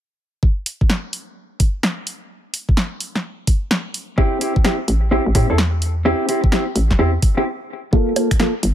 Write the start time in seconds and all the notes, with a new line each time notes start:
0.43 kick
0.66 open hi-hat
0.81 kick
0.90 snare
1.13 open hi-hat
1.60 kick, open hi-hat
1.83 snare
2.07 open hi-hat
2.54 open hi-hat
2.69 kick
2.77 snare
3.00 open hi-hat
3.15 snare
3.47 kick, open hi-hat
3.71 snare
3.94 open hi-hat
4.18 C4 E4 G4, kick
4.41 C4 E4 G4, open hi-hat
4.56 kick
4.64 C4 E4 G4, snare
4.88 A1, open hi-hat
5.11 C4 E4 G4
5.26 A1
5.35 A2 C4 E4 G4, kick, open hi-hat
5.50 E2 C4 E4 A4
5.58 snare
5.82 open hi-hat
6.05 C4 E4 G4
6.28 C4 E4 G4, open hi-hat
6.44 kick
6.52 C4 E4 G4, snare
6.76 A1, open hi-hat
6.91 kick, snare
6.99 E2 C4 E4 G4
7.22 kick, open hi-hat
7.37 C4 E4 G4
7.93 A#3 F4 A4, kick
8.16 A#3 F4 A4, open hi-hat, high bongo
8.31 finger snap, kick, closed hi-hat
8.39 A#3 F4 A4, snare
8.63 G1, open hi-hat